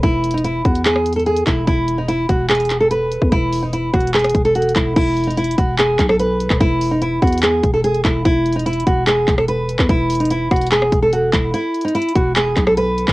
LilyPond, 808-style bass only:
\new Staff \with { instrumentName = "808-style bass" } { \clef bass \time 4/4 \key e \major \tempo 4 = 146 e,,4. e,2 e,,8 | e,,4. e,,2~ e,,16 e,16 | e,,4. e,,4 e,,4 e,,8 | e,,4. e,,4 b,,4~ b,,16 e,,16 |
e,,4. e,4 e,,4 e,,8 | e,,4. e,,4 e,,4~ e,,16 e,16 | e,,4. e,,4 e,,4 e,,8 | r4. e,,4 b,,4~ b,,16 e,,16 | }